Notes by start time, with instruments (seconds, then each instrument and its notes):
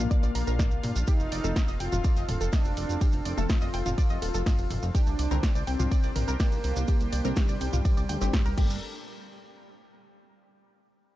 Already playing: synth stab D3 F3 A#3, analog polysynth A#3, analog synth pad D4 F4 G4 F5
0.11 synth arpeggio sound D5 D6, kick, closed hi-hat, maracas
0.23 analog synth bass A#1, synth arpeggio sound D5 D6, closed hi-hat, maracas
0.35 analog synth bass A#1, synth arpeggio sound A#4 A#5, open hi-hat
0.47 analog synth bass A#1, synth arpeggio sound A#4 A#5, closed hi-hat, maracas
0.59 synth arpeggio sound D5 D6, kick, snare, closed hi-hat, mid tom, maracas
0.71 analog synth bass C2, closed hi-hat, maracas
0.83 analog synth bass A#2, mid tom, open hi-hat
0.96 analog synth bass A#1, closed hi-hat, maracas
1.07 analog synth pad C4 A4, analog polysynth D#4, synth arpeggio sound G4 G5, kick, closed hi-hat, ride, maracas
1.20 analog synth bass F1, closed hi-hat, maracas
1.32 analog synth bass F1, synth arpeggio sound D5 D6, open hi-hat
1.44 analog synth bass F1, synth stab C3 F3 A3, synth arpeggio sound A4 A5, closed hi-hat, maracas
1.56 synth arpeggio sound D#5 D#6, kick, snare, closed hi-hat, ride, maracas
1.68 analog synth bass F1, synth arpeggio sound D#5 D#6, closed hi-hat, maracas
1.80 analog synth bass F1, analog polysynth F4, synth arpeggio sound G5 G6, open hi-hat
1.92 analog synth bass F1, synth arpeggio sound F4 F5, closed hi-hat, mid tom, maracas
2.04 synth arpeggio sound D5 D6, kick, closed hi-hat, ride, maracas
2.17 analog synth bass F1, synth arpeggio sound D#5 D#6, closed hi-hat, maracas
2.29 analog synth bass D#1, synth arpeggio sound A4 A5, mid tom, open hi-hat
2.41 analog synth bass F1, synth arpeggio sound A4 A5, closed hi-hat, maracas
2.53 analog polysynth D4, synth arpeggio sound D#5 D#6, kick, snare, closed hi-hat, ride, maracas
2.65 analog synth bass F1, closed hi-hat, maracas
2.77 analog synth bass F1, open hi-hat
2.89 analog synth bass F1, closed hi-hat, maracas
3.01 synth arpeggio sound G4 G5, kick, closed hi-hat, ride, maracas
3.12 analog synth bass F1, closed hi-hat, maracas
3.25 analog synth bass F1, synth arpeggio sound D5 D6, open hi-hat
3.38 analog synth bass F1, synth stab C3 F3 A3, synth arpeggio sound A4 A5, closed hi-hat, maracas
3.49 analog polysynth F4, synth arpeggio sound D#5 D#6, kick, snare, closed hi-hat, ride, maracas
3.61 analog synth bass F1, synth arpeggio sound D#5 D#6, closed hi-hat, maracas
3.74 analog synth bass F1, synth arpeggio sound G5 G6, open hi-hat
3.86 analog synth bass F1, synth arpeggio sound F4 F5, closed hi-hat, mid tom, maracas
3.98 synth arpeggio sound D5 D6, kick, closed hi-hat, ride, maracas
4.10 analog synth bass F1, synth arpeggio sound D#5 D#6, closed hi-hat, maracas
4.22 analog synth bass D#1, synth arpeggio sound A4 A5, open hi-hat
4.34 analog synth bass F1, synth arpeggio sound A4 A5, closed hi-hat, maracas
4.46 synth arpeggio sound D#5 D#6, kick, snare, closed hi-hat, mid tom, ride, maracas
4.58 analog synth bass F1, closed hi-hat, maracas
4.71 analog synth bass F1, mid tom, open hi-hat
4.82 analog synth bass F1, closed hi-hat, maracas
4.95 analog synth pad D4 G4 C5 G5, analog polysynth D4, synth arpeggio sound G4 G5, kick, closed hi-hat, ride, maracas
5.07 analog synth bass C2, closed hi-hat, maracas
5.19 analog synth bass C2, synth arpeggio sound D5 D6, open hi-hat
5.31 analog synth bass C2, synth stab D3 G3 C4, synth arpeggio sound A#4 A#5, closed hi-hat, maracas
5.43 synth arpeggio sound D5 D6, kick, snare, closed hi-hat, ride, maracas
5.55 analog synth bass C2, synth arpeggio sound D5 D6, closed hi-hat, maracas
5.67 analog synth bass C2, analog polysynth C4, synth arpeggio sound G5 G6, open hi-hat
5.79 analog synth bass C2, synth arpeggio sound F4 F5, closed hi-hat, mid tom, maracas
5.91 synth arpeggio sound D5 D6, kick, closed hi-hat, ride, maracas
6.03 analog synth bass C2, synth arpeggio sound D5 D6, closed hi-hat, maracas
6.16 analog synth bass A#1, synth arpeggio sound A#4 A#5, mid tom, open hi-hat
6.28 analog synth bass C2, synth arpeggio sound A#4 A#5, closed hi-hat, maracas
6.40 analog polysynth A#3, synth arpeggio sound D5 D6, kick, snare, closed hi-hat, ride, maracas
6.52 analog synth bass C2, closed hi-hat, maracas
6.64 analog synth bass C2, open hi-hat
6.76 analog synth bass C2, closed hi-hat, maracas
6.88 synth arpeggio sound G4 G5, kick, closed hi-hat, ride, maracas
7.00 analog synth bass C2, closed hi-hat, maracas
7.12 analog synth bass C2, synth arpeggio sound D5 D6, open hi-hat
7.25 analog synth bass C2, synth stab D3 G3 C4, synth arpeggio sound A#4 A#5, closed hi-hat, maracas
7.36 analog polysynth G3, synth arpeggio sound D5 D6, kick, snare, closed hi-hat, ride, maracas
7.48 analog synth bass C2, synth arpeggio sound D5 D6, closed hi-hat, maracas
7.61 analog synth bass C2, synth arpeggio sound G5 G6, open hi-hat
7.73 analog synth bass C2, synth arpeggio sound F4 F5, closed hi-hat, mid tom, maracas
7.85 synth arpeggio sound D5 D6, kick, closed hi-hat, ride, maracas
7.97 analog synth bass C2, synth arpeggio sound D5 D6, closed hi-hat, maracas
8.09 analog synth bass D2, synth arpeggio sound G5 G6, open hi-hat
8.21 analog synth bass G1, synth stab D3 G3 C4, synth arpeggio sound G4 G5, snare, closed hi-hat, maracas
8.33 synth arpeggio sound G4 G5, kick, snare, closed hi-hat, mid tom, ride, maracas
8.46 analog synth bass C2, synth arpeggio sound A#4 A#5, closed hi-hat, maracas
8.58 analog synth bass G1, synth stab A#2 G3 A3, analog polysynth G3, analog synth pad G3 D4 A4 A#4, synth arpeggio sound G4, kick, crash
8.70 maracas